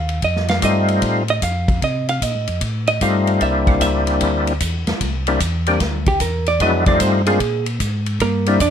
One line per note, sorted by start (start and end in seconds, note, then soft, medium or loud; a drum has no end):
0.00 0.21 D#2 medium
0.00 0.21 F5 medium
0.09 ride soft
0.22 0.61 F2 medium
0.22 0.49 D#5 medium
0.22 kick soft
0.22 ride medium
0.36 snare soft
0.48 0.62 F5 loud
0.48 snare soft
0.48 ride soft
0.62 1.01 G2 medium
0.62 1.23 G3 medium
0.62 1.23 A3 medium
0.62 1.23 C4 medium
0.62 1.23 D#4 medium
0.62 1.23 F4 medium
0.62 1.01 D#5 medium
0.62 kick soft
0.62 hi-hat pedal medium
0.62 ride medium
0.88 ride soft
1.02 1.41 A2 medium
1.02 kick soft
1.02 ride medium
1.28 1.43 D#5 medium
1.28 ride soft
1.42 1.81 F2 medium
1.42 1.80 F5 medium
1.42 kick soft
1.42 hi-hat pedal medium
1.42 ride medium
1.68 kick medium
1.68 ride soft
1.82 2.21 C3 medium
1.82 2.08 D#5 medium
1.82 kick soft
1.82 ride medium
2.08 2.23 F5 loud
2.08 ride soft
2.22 2.35 A#2 medium
2.22 2.62 D#5 medium
2.22 kick soft
2.22 hi-hat pedal medium
2.22 ride medium
2.35 2.48 A2 medium
2.47 2.61 F2 medium
2.47 ride soft
2.61 3.00 A2 medium
2.61 kick soft
2.61 ride medium
2.87 3.01 D#5 medium
2.87 ride soft
3.01 3.40 G2 medium
3.01 3.40 G3 medium
3.01 3.41 A3 medium
3.01 3.40 C4 medium
3.01 3.42 D#4 soft
3.01 3.42 F4 medium
3.01 3.39 F5 medium
3.01 kick soft
3.01 hi-hat pedal medium
3.01 ride medium
3.27 ride soft
3.41 3.80 C2 medium
3.41 4.53 G3 medium
3.41 4.53 A#3 soft
3.41 4.53 C4 soft
3.41 4.53 D4 soft
3.41 4.53 E4 medium
3.41 3.68 E5 medium
3.41 kick soft
3.41 ride medium
3.67 3.81 F5 loud
3.67 kick medium
3.67 ride soft
3.81 4.20 C#2 medium
3.81 4.19 E5 medium
3.81 kick soft
3.81 hi-hat pedal medium
3.81 ride medium
4.07 ride medium
4.21 4.60 D2 medium
4.21 kick soft
4.21 ride medium
4.47 ride soft
4.60 4.85 E2 medium
4.60 kick soft
4.60 hi-hat pedal medium
4.60 ride medium
4.86 4.94 E2 soft
4.86 snare soft
4.86 ride soft
5.00 5.39 C2 medium
5.00 kick soft
5.00 ride medium
5.27 5.40 G3 medium
5.27 5.40 A#3 medium
5.27 5.40 C4 medium
5.27 5.40 D4 medium
5.27 5.40 E4 medium
5.27 ride soft
5.40 5.79 E2 loud
5.40 kick soft
5.40 hi-hat pedal medium
5.40 ride medium
5.66 5.80 G3 medium
5.66 5.80 A#3 medium
5.66 5.80 C4 medium
5.66 5.80 D4 medium
5.66 5.80 G4 medium
5.66 ride medium
5.80 6.19 D2 medium
5.80 kick soft
5.80 snare soft
5.80 ride medium
6.06 6.21 G4 medium
6.06 kick medium
6.06 ride soft
6.20 6.59 E2 medium
6.20 6.47 A#4 medium
6.20 kick soft
6.20 hi-hat pedal medium
6.20 ride medium
6.46 6.61 D5 loud
6.46 ride soft
6.60 6.99 F2 medium
6.60 6.84 F#3 medium
6.60 6.84 G#3 medium
6.60 6.85 B3 medium
6.60 6.85 D4 medium
6.60 6.85 E4 medium
6.60 6.87 D#5 medium
6.60 kick soft
6.60 ride medium
6.86 7.22 G3 medium
6.86 7.22 A3 medium
6.86 7.22 C4 medium
6.86 7.22 D#4 medium
6.86 7.22 F4 medium
6.86 7.00 D5 loud
6.86 kick medium
6.86 ride soft
7.00 7.39 G2 medium
7.00 7.27 C5 medium
7.00 kick soft
7.00 hi-hat pedal medium
7.00 ride medium
7.26 7.39 G#3 medium
7.26 7.39 A#3 medium
7.26 7.40 C4 medium
7.26 7.40 D4 medium
7.26 7.40 F4 medium
7.26 7.64 G#4 medium
7.26 ride medium
7.40 7.79 A#2 medium
7.40 kick soft
7.40 ride medium
7.66 ride soft
7.80 8.19 G#2 medium
7.80 kick soft
7.80 hi-hat pedal medium
7.80 ride medium
8.06 ride soft
8.20 8.59 G2 medium
8.20 8.59 A#3 medium
8.20 8.58 A#4 medium
8.20 kick soft
8.20 ride medium
8.46 8.59 G3 medium
8.46 8.59 A#3 medium
8.46 8.60 C4 medium
8.46 8.60 D4 medium
8.46 8.60 E4 medium
8.46 ride medium
8.60 8.70 F2 medium
8.60 8.70 D4 medium
8.60 8.70 D5 medium
8.60 kick soft
8.60 hi-hat pedal medium
8.60 ride medium